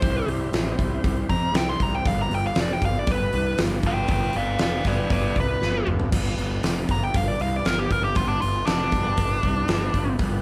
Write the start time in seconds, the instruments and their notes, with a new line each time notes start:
Already playing: lead electric guitar C5
0.02 picked electric bass C2, tonewheel organ G3 C4 E4 C5, kick, open hi-hat
0.27 picked electric bass C2, open hi-hat
0.52 picked electric bass A1, snare, open hi-hat
0.79 picked electric bass C2, kick, open hi-hat
1.04 picked electric bass C2, kick, open hi-hat
1.29 picked electric bass F2, lead electric guitar A#5, kick, open hi-hat
1.53 picked electric bass C2, lead electric guitar G5, snare, open hi-hat
1.69 lead electric guitar C6
1.80 picked electric bass C2, lead electric guitar A#5, kick, open hi-hat
1.95 lead electric guitar G5
2.05 picked electric bass G1, tonewheel organ G3 B3 D4 B4, lead electric guitar F5, kick, open hi-hat
2.22 lead electric guitar A#5
2.30 picked electric bass G1, open hi-hat
2.34 lead electric guitar G5
2.47 lead electric guitar F5
2.55 picked electric bass F1, snare, open hi-hat
2.61 lead electric guitar D5
2.73 lead electric guitar G5
2.82 picked electric bass G1, lead electric guitar F5, kick, open hi-hat
2.99 lead electric guitar D5
3.07 picked electric bass G1, kick, open hi-hat
3.11 lead electric guitar B4
3.33 picked electric bass C2, open hi-hat
3.58 picked electric bass G1, snare, open hi-hat
3.83 picked electric bass G1, lead electric guitar B4, kick, open hi-hat
3.87 lead electric guitar G5
4.08 picked electric bass G1, lead electric guitar B4 G5, kick, open hi-hat
4.33 picked electric bass G1, lead electric guitar D5 F5, open hi-hat
4.59 picked electric bass F1, lead electric guitar D5, snare, open hi-hat
4.63 lead electric guitar F5
4.84 picked electric bass G1, lead electric guitar B4 D5, kick, snare, open hi-hat
5.10 picked electric bass G1, lead electric guitar B4 D5, kick, open hi-hat
5.36 picked electric bass C2, kick, open hi-hat
5.40 lead electric guitar B4
5.61 picked electric bass G1, snare
5.87 picked electric bass G1, mid tom
6.00 floor tom
6.12 picked electric bass G1, tonewheel organ G3 B3 D4 B4, kick, crash
6.38 picked electric bass G1, open hi-hat
6.63 picked electric bass F1, snare, open hi-hat
6.89 picked electric bass G1, lead electric guitar A#5, kick, open hi-hat
7.04 lead electric guitar G5
7.14 picked electric bass G1, lead electric guitar F5, kick, open hi-hat
7.28 lead electric guitar D5
7.40 picked electric bass C2, lead electric guitar F5, open hi-hat
7.56 lead electric guitar D5
7.65 picked electric bass G1, lead electric guitar A#4, snare, open hi-hat
7.79 lead electric guitar G4
7.90 picked electric bass G1, lead electric guitar A#4, kick, open hi-hat
8.04 lead electric guitar G4
8.15 picked electric bass G1, lead electric guitar F4, kick, open hi-hat
8.28 lead electric guitar D4
8.41 picked electric bass G1, lead electric guitar F4, open hi-hat
8.66 picked electric bass F1, lead electric guitar D4, snare, open hi-hat
8.92 picked electric bass G1, kick, snare, open hi-hat
9.17 picked electric bass G1, kick, open hi-hat
9.43 picked electric bass C2, kick, open hi-hat
9.68 picked electric bass G1, snare, open hi-hat
9.94 picked electric bass G1, kick, open hi-hat
10.19 picked electric bass G1, tonewheel organ G3 B3 D4 B4, kick, open hi-hat